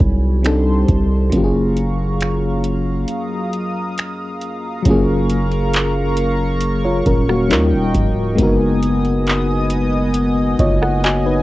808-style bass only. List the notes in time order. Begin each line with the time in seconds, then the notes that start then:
0.00 C2
0.89 C2
1.33 F#1
4.86 F#1
7.06 D#1
7.51 D#2
7.73 D#1
7.95 C#1
8.39 F#1
10.59 F#1